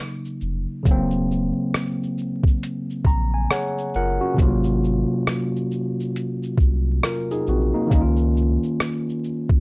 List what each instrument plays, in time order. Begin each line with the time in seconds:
Already playing: tine electric piano C#3 F#3 A#3 D#4
0.25 shaker
0.41 sub bass F1, shaker
0.83 sub bass D#1, tine electric piano C#3 F#3, kick, closed hi-hat, shaker
0.88 tine electric piano A#3 C4
1.11 shaker
1.31 shaker
1.74 cross-stick, closed hi-hat, shaker
2.03 shaker
2.18 shaker
2.43 kick, shaker
2.63 closed hi-hat, shaker
2.90 shaker
3.05 sub bass A#1, tine electric piano A#5, kick, shaker
3.34 tine electric piano G#5
3.51 tine electric piano G#4 C#5 F#5, cross-stick, closed hi-hat, shaker
3.78 shaker
3.94 sub bass F#1, tine electric piano F4 A#4 F#5, shaker
4.21 tine electric piano C#4 F#4
4.34 tine electric piano C3 F#3
4.38 sub bass G#1, tine electric piano A#3 F4, kick, closed hi-hat, shaker
4.64 shaker
4.84 shaker
5.27 cross-stick, closed hi-hat, shaker
5.56 shaker
5.71 shaker
6.00 shaker
6.16 closed hi-hat, shaker
6.43 shaker
6.58 sub bass C2, kick, shaker
7.03 tine electric piano F4 A#4, cross-stick, closed hi-hat, shaker
7.31 tine electric piano D#4 G#4, shaker
7.47 sub bass A#1, tine electric piano C4 F#4, shaker
7.74 tine electric piano A#3 D#4
7.87 tine electric piano D#3 A#3
7.91 sub bass C#2, tine electric piano C#4 D#4, kick, closed hi-hat, shaker
8.01 tine electric piano F4
8.17 shaker
8.37 shaker
8.63 shaker
8.80 cross-stick, closed hi-hat, shaker
9.09 shaker
9.24 shaker
9.49 kick